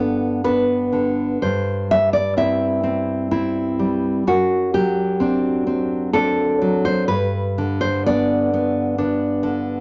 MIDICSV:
0, 0, Header, 1, 2, 480
1, 0, Start_track
1, 0, Key_signature, 1, "major"
1, 0, Tempo, 953895
1, 712, Time_signature, 3, 2, 24, 8
1, 4066, Tempo, 913242
1, 4972, End_track
2, 0, Start_track
2, 0, Title_t, "Nylon-string guitar"
2, 0, Program_c, 0, 24
2, 0, Note_on_c, 0, 43, 67
2, 0, Note_on_c, 0, 50, 57
2, 0, Note_on_c, 0, 59, 51
2, 0, Note_on_c, 0, 62, 61
2, 0, Note_on_c, 0, 69, 96
2, 199, Note_off_c, 0, 69, 0
2, 217, Note_off_c, 0, 59, 0
2, 222, Note_off_c, 0, 50, 0
2, 223, Note_on_c, 0, 59, 54
2, 224, Note_off_c, 0, 62, 0
2, 224, Note_on_c, 0, 71, 95
2, 230, Note_on_c, 0, 62, 61
2, 466, Note_on_c, 0, 50, 54
2, 687, Note_off_c, 0, 43, 0
2, 690, Note_off_c, 0, 59, 0
2, 691, Note_off_c, 0, 71, 0
2, 694, Note_off_c, 0, 62, 0
2, 711, Note_off_c, 0, 50, 0
2, 715, Note_on_c, 0, 43, 67
2, 715, Note_on_c, 0, 72, 88
2, 946, Note_off_c, 0, 72, 0
2, 961, Note_on_c, 0, 55, 55
2, 962, Note_on_c, 0, 76, 104
2, 1070, Note_off_c, 0, 76, 0
2, 1072, Note_on_c, 0, 74, 88
2, 1189, Note_off_c, 0, 74, 0
2, 1192, Note_on_c, 0, 60, 53
2, 1195, Note_on_c, 0, 64, 60
2, 1196, Note_on_c, 0, 76, 87
2, 1420, Note_off_c, 0, 60, 0
2, 1426, Note_on_c, 0, 60, 52
2, 1660, Note_off_c, 0, 64, 0
2, 1661, Note_off_c, 0, 55, 0
2, 1661, Note_off_c, 0, 60, 0
2, 1667, Note_on_c, 0, 60, 54
2, 1668, Note_on_c, 0, 64, 61
2, 1879, Note_off_c, 0, 76, 0
2, 1909, Note_on_c, 0, 55, 55
2, 2123, Note_off_c, 0, 43, 0
2, 2126, Note_off_c, 0, 60, 0
2, 2126, Note_off_c, 0, 64, 0
2, 2147, Note_off_c, 0, 55, 0
2, 2150, Note_on_c, 0, 42, 67
2, 2152, Note_on_c, 0, 66, 86
2, 2377, Note_off_c, 0, 66, 0
2, 2386, Note_on_c, 0, 67, 96
2, 2389, Note_on_c, 0, 54, 55
2, 2617, Note_on_c, 0, 60, 59
2, 2623, Note_on_c, 0, 62, 64
2, 2846, Note_off_c, 0, 60, 0
2, 2852, Note_on_c, 0, 60, 61
2, 3075, Note_off_c, 0, 67, 0
2, 3083, Note_off_c, 0, 60, 0
2, 3084, Note_off_c, 0, 62, 0
2, 3087, Note_on_c, 0, 69, 100
2, 3089, Note_on_c, 0, 60, 55
2, 3091, Note_on_c, 0, 62, 65
2, 3097, Note_off_c, 0, 54, 0
2, 3329, Note_on_c, 0, 54, 57
2, 3436, Note_off_c, 0, 69, 0
2, 3446, Note_on_c, 0, 72, 99
2, 3554, Note_off_c, 0, 60, 0
2, 3554, Note_off_c, 0, 62, 0
2, 3560, Note_off_c, 0, 42, 0
2, 3560, Note_off_c, 0, 72, 0
2, 3562, Note_on_c, 0, 71, 95
2, 3565, Note_on_c, 0, 43, 68
2, 3574, Note_off_c, 0, 54, 0
2, 3814, Note_on_c, 0, 50, 65
2, 3923, Note_off_c, 0, 71, 0
2, 3929, Note_on_c, 0, 72, 100
2, 4055, Note_off_c, 0, 72, 0
2, 4058, Note_on_c, 0, 59, 58
2, 4058, Note_on_c, 0, 74, 93
2, 4062, Note_on_c, 0, 62, 66
2, 4299, Note_off_c, 0, 59, 0
2, 4305, Note_on_c, 0, 59, 61
2, 4534, Note_off_c, 0, 59, 0
2, 4535, Note_off_c, 0, 62, 0
2, 4541, Note_off_c, 0, 50, 0
2, 4541, Note_on_c, 0, 62, 64
2, 4542, Note_on_c, 0, 59, 59
2, 4760, Note_off_c, 0, 74, 0
2, 4776, Note_on_c, 0, 50, 61
2, 4972, Note_off_c, 0, 43, 0
2, 4972, Note_off_c, 0, 50, 0
2, 4972, Note_off_c, 0, 59, 0
2, 4972, Note_off_c, 0, 62, 0
2, 4972, End_track
0, 0, End_of_file